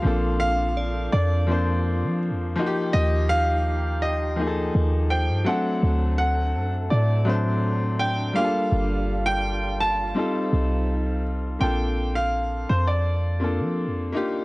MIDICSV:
0, 0, Header, 1, 6, 480
1, 0, Start_track
1, 0, Key_signature, -2, "major"
1, 0, Tempo, 722892
1, 31, Time_signature, 4, 2, 24, 8
1, 9592, End_track
2, 0, Start_track
2, 0, Title_t, "Grand piano"
2, 0, Program_c, 0, 0
2, 0, Note_on_c, 0, 77, 100
2, 255, Note_off_c, 0, 77, 0
2, 265, Note_on_c, 0, 77, 117
2, 722, Note_off_c, 0, 77, 0
2, 748, Note_on_c, 0, 74, 94
2, 1443, Note_off_c, 0, 74, 0
2, 1946, Note_on_c, 0, 75, 97
2, 2172, Note_off_c, 0, 75, 0
2, 2186, Note_on_c, 0, 77, 125
2, 2670, Note_on_c, 0, 75, 87
2, 2683, Note_off_c, 0, 77, 0
2, 3124, Note_off_c, 0, 75, 0
2, 3388, Note_on_c, 0, 79, 90
2, 3629, Note_on_c, 0, 78, 91
2, 3637, Note_off_c, 0, 79, 0
2, 4095, Note_off_c, 0, 78, 0
2, 4105, Note_on_c, 0, 78, 111
2, 4562, Note_off_c, 0, 78, 0
2, 4587, Note_on_c, 0, 74, 90
2, 5309, Note_on_c, 0, 79, 100
2, 5331, Note_off_c, 0, 74, 0
2, 5549, Note_on_c, 0, 77, 108
2, 5557, Note_off_c, 0, 79, 0
2, 6148, Note_on_c, 0, 79, 117
2, 6168, Note_off_c, 0, 77, 0
2, 6484, Note_off_c, 0, 79, 0
2, 6510, Note_on_c, 0, 81, 117
2, 7444, Note_off_c, 0, 81, 0
2, 7706, Note_on_c, 0, 79, 94
2, 8069, Note_on_c, 0, 77, 101
2, 8079, Note_off_c, 0, 79, 0
2, 8429, Note_on_c, 0, 72, 78
2, 8441, Note_off_c, 0, 77, 0
2, 8541, Note_off_c, 0, 72, 0
2, 8549, Note_on_c, 0, 74, 87
2, 9363, Note_off_c, 0, 74, 0
2, 9592, End_track
3, 0, Start_track
3, 0, Title_t, "Synth bell"
3, 0, Program_c, 1, 98
3, 512, Note_on_c, 1, 74, 84
3, 1925, Note_off_c, 1, 74, 0
3, 3391, Note_on_c, 1, 72, 63
3, 3844, Note_off_c, 1, 72, 0
3, 5313, Note_on_c, 1, 74, 78
3, 5766, Note_off_c, 1, 74, 0
3, 9592, End_track
4, 0, Start_track
4, 0, Title_t, "Flute section"
4, 0, Program_c, 2, 73
4, 0, Note_on_c, 2, 62, 78
4, 0, Note_on_c, 2, 65, 70
4, 0, Note_on_c, 2, 77, 83
4, 30, Note_on_c, 2, 69, 70
4, 1554, Note_off_c, 2, 62, 0
4, 1685, Note_off_c, 2, 77, 0
4, 1686, Note_off_c, 2, 65, 0
4, 1694, Note_off_c, 2, 69, 0
4, 1709, Note_on_c, 2, 67, 70
4, 1709, Note_on_c, 2, 79, 87
4, 1710, Note_on_c, 2, 63, 78
4, 3420, Note_off_c, 2, 79, 0
4, 3611, Note_off_c, 2, 63, 0
4, 3611, Note_off_c, 2, 67, 0
4, 3629, Note_on_c, 2, 72, 70
4, 3630, Note_on_c, 2, 62, 79
4, 3630, Note_on_c, 2, 69, 70
4, 3631, Note_on_c, 2, 81, 85
4, 5531, Note_off_c, 2, 72, 0
4, 5532, Note_off_c, 2, 69, 0
4, 5532, Note_off_c, 2, 81, 0
4, 5548, Note_on_c, 2, 65, 73
4, 5548, Note_on_c, 2, 67, 70
4, 5548, Note_on_c, 2, 77, 84
4, 5549, Note_on_c, 2, 74, 71
4, 6545, Note_off_c, 2, 62, 0
4, 6738, Note_off_c, 2, 67, 0
4, 6738, Note_off_c, 2, 74, 0
4, 6750, Note_on_c, 2, 63, 75
4, 6750, Note_on_c, 2, 69, 70
4, 6750, Note_on_c, 2, 72, 67
4, 7688, Note_off_c, 2, 65, 0
4, 7688, Note_off_c, 2, 77, 0
4, 7701, Note_off_c, 2, 63, 0
4, 7701, Note_off_c, 2, 69, 0
4, 7701, Note_off_c, 2, 72, 0
4, 9592, End_track
5, 0, Start_track
5, 0, Title_t, "Grand piano"
5, 0, Program_c, 3, 0
5, 0, Control_c, 3, 64, 127
5, 15, Note_on_c, 3, 53, 73
5, 22, Note_on_c, 3, 58, 70
5, 29, Note_on_c, 3, 60, 66
5, 37, Note_on_c, 3, 62, 72
5, 40, Control_c, 3, 64, 0
5, 46, Note_on_c, 3, 69, 81
5, 173, Control_c, 3, 64, 127
5, 605, Note_off_c, 3, 53, 0
5, 609, Note_off_c, 3, 58, 0
5, 613, Note_off_c, 3, 60, 0
5, 617, Note_off_c, 3, 62, 0
5, 621, Note_off_c, 3, 69, 0
5, 975, Note_on_c, 3, 53, 78
5, 983, Note_on_c, 3, 58, 73
5, 991, Note_on_c, 3, 60, 73
5, 998, Note_on_c, 3, 62, 69
5, 1005, Note_on_c, 3, 72, 86
5, 1566, Note_off_c, 3, 53, 0
5, 1569, Note_off_c, 3, 58, 0
5, 1574, Note_off_c, 3, 60, 0
5, 1577, Note_off_c, 3, 62, 0
5, 1581, Note_off_c, 3, 72, 0
5, 1697, Note_on_c, 3, 53, 96
5, 1705, Note_on_c, 3, 58, 90
5, 1719, Note_on_c, 3, 63, 89
5, 1721, Control_c, 3, 64, 0
5, 1728, Note_on_c, 3, 66, 82
5, 1763, Note_off_c, 3, 66, 0
5, 1769, Note_on_c, 3, 67, 107
5, 1823, Control_c, 3, 64, 127
5, 2472, Note_off_c, 3, 53, 0
5, 2476, Note_off_c, 3, 58, 0
5, 2483, Note_off_c, 3, 63, 0
5, 2508, Note_off_c, 3, 67, 0
5, 2896, Note_on_c, 3, 53, 79
5, 2904, Note_on_c, 3, 58, 71
5, 2919, Note_on_c, 3, 63, 70
5, 2927, Note_on_c, 3, 68, 68
5, 2962, Note_off_c, 3, 68, 0
5, 2969, Note_on_c, 3, 69, 90
5, 3486, Note_off_c, 3, 53, 0
5, 3490, Note_off_c, 3, 58, 0
5, 3498, Note_off_c, 3, 63, 0
5, 3523, Note_off_c, 3, 69, 0
5, 3615, Note_on_c, 3, 54, 76
5, 3623, Note_on_c, 3, 57, 77
5, 3631, Note_on_c, 3, 60, 79
5, 3639, Control_c, 3, 64, 0
5, 3639, Note_on_c, 3, 62, 75
5, 3645, Note_on_c, 3, 69, 90
5, 3753, Control_c, 3, 64, 127
5, 4391, Note_off_c, 3, 54, 0
5, 4395, Note_off_c, 3, 57, 0
5, 4399, Note_off_c, 3, 60, 0
5, 4403, Note_off_c, 3, 62, 0
5, 4406, Note_off_c, 3, 69, 0
5, 4814, Note_on_c, 3, 54, 80
5, 4822, Note_on_c, 3, 57, 75
5, 4830, Note_on_c, 3, 60, 70
5, 4838, Note_on_c, 3, 62, 75
5, 4845, Note_on_c, 3, 72, 90
5, 5405, Note_off_c, 3, 54, 0
5, 5409, Note_off_c, 3, 57, 0
5, 5413, Note_off_c, 3, 60, 0
5, 5417, Note_off_c, 3, 62, 0
5, 5421, Note_off_c, 3, 72, 0
5, 5533, Note_on_c, 3, 55, 78
5, 5541, Note_on_c, 3, 58, 74
5, 5549, Note_on_c, 3, 62, 77
5, 5557, Note_on_c, 3, 65, 76
5, 5560, Control_c, 3, 64, 0
5, 5563, Note_on_c, 3, 68, 71
5, 5601, Note_off_c, 3, 68, 0
5, 5607, Note_on_c, 3, 69, 90
5, 5679, Control_c, 3, 64, 127
5, 6310, Note_off_c, 3, 55, 0
5, 6314, Note_off_c, 3, 58, 0
5, 6318, Note_off_c, 3, 62, 0
5, 6322, Note_off_c, 3, 65, 0
5, 6347, Note_off_c, 3, 69, 0
5, 6736, Note_on_c, 3, 55, 83
5, 6743, Note_on_c, 3, 60, 73
5, 6751, Note_on_c, 3, 63, 70
5, 6758, Note_on_c, 3, 65, 68
5, 6762, Control_c, 3, 64, 0
5, 6765, Note_on_c, 3, 69, 84
5, 6880, Control_c, 3, 64, 127
5, 7326, Note_off_c, 3, 55, 0
5, 7330, Note_off_c, 3, 60, 0
5, 7333, Note_off_c, 3, 63, 0
5, 7337, Note_off_c, 3, 65, 0
5, 7341, Note_off_c, 3, 69, 0
5, 7695, Note_on_c, 3, 58, 66
5, 7701, Note_on_c, 3, 60, 62
5, 7710, Note_on_c, 3, 62, 64
5, 7716, Note_on_c, 3, 65, 66
5, 7719, Control_c, 3, 64, 0
5, 7724, Note_on_c, 3, 69, 81
5, 7848, Control_c, 3, 64, 127
5, 8286, Note_off_c, 3, 58, 0
5, 8289, Note_off_c, 3, 60, 0
5, 8293, Note_off_c, 3, 62, 0
5, 8296, Note_off_c, 3, 65, 0
5, 8300, Note_off_c, 3, 69, 0
5, 8896, Note_on_c, 3, 58, 72
5, 8903, Note_on_c, 3, 60, 64
5, 8912, Note_on_c, 3, 62, 65
5, 8919, Note_on_c, 3, 65, 64
5, 8926, Note_on_c, 3, 69, 76
5, 9341, Note_off_c, 3, 58, 0
5, 9344, Note_off_c, 3, 60, 0
5, 9348, Note_off_c, 3, 62, 0
5, 9352, Note_off_c, 3, 65, 0
5, 9355, Note_off_c, 3, 69, 0
5, 9380, Note_on_c, 3, 58, 92
5, 9385, Note_on_c, 3, 62, 81
5, 9393, Note_on_c, 3, 63, 80
5, 9401, Control_c, 3, 64, 0
5, 9402, Note_on_c, 3, 65, 82
5, 9408, Note_on_c, 3, 67, 98
5, 9512, Control_c, 3, 64, 127
5, 9592, Note_off_c, 3, 58, 0
5, 9592, Note_off_c, 3, 62, 0
5, 9592, Note_off_c, 3, 63, 0
5, 9592, Note_off_c, 3, 65, 0
5, 9592, Note_off_c, 3, 67, 0
5, 9592, End_track
6, 0, Start_track
6, 0, Title_t, "808-style bass"
6, 0, Program_c, 4, 38
6, 32, Note_on_c, 4, 34, 110
6, 725, Note_off_c, 4, 34, 0
6, 753, Note_on_c, 4, 41, 105
6, 1353, Note_on_c, 4, 53, 98
6, 1363, Note_off_c, 4, 41, 0
6, 1532, Note_on_c, 4, 41, 104
6, 1541, Note_off_c, 4, 53, 0
6, 1702, Note_off_c, 4, 41, 0
6, 1952, Note_on_c, 4, 39, 113
6, 3125, Note_off_c, 4, 39, 0
6, 3153, Note_on_c, 4, 39, 100
6, 3513, Note_on_c, 4, 43, 102
6, 3523, Note_off_c, 4, 39, 0
6, 3626, Note_off_c, 4, 43, 0
6, 3873, Note_on_c, 4, 38, 112
6, 4352, Note_on_c, 4, 42, 93
6, 4361, Note_off_c, 4, 38, 0
6, 4579, Note_off_c, 4, 42, 0
6, 4593, Note_on_c, 4, 45, 96
6, 5526, Note_off_c, 4, 45, 0
6, 5791, Note_on_c, 4, 31, 115
6, 6725, Note_off_c, 4, 31, 0
6, 6991, Note_on_c, 4, 36, 97
6, 7684, Note_off_c, 4, 36, 0
6, 7711, Note_on_c, 4, 34, 101
6, 8404, Note_off_c, 4, 34, 0
6, 8432, Note_on_c, 4, 41, 106
6, 9032, Note_on_c, 4, 53, 96
6, 9042, Note_off_c, 4, 41, 0
6, 9212, Note_on_c, 4, 41, 93
6, 9222, Note_off_c, 4, 53, 0
6, 9383, Note_off_c, 4, 41, 0
6, 9592, End_track
0, 0, End_of_file